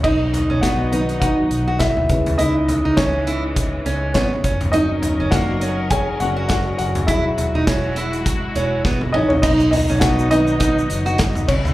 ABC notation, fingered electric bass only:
X:1
M:4/4
L:1/16
Q:"Swing 16ths" 1/4=102
K:B
V:1 name="Fingered electric bass" clef=bass
B,,,3 B,,,6- B,,, B,,,4 C,,2 | C,,3 C,,6- C,, C,,2 G,,,2 F,,,2- | F,,,3 F,,,6- F,,, F,,,4 F,,,2 | E,,,3 E,,,6- E,,, E,,,2 E,,,2 A,,,2 |
B,,,3 B,,, B,,,6 F,,,4 C,,2 |]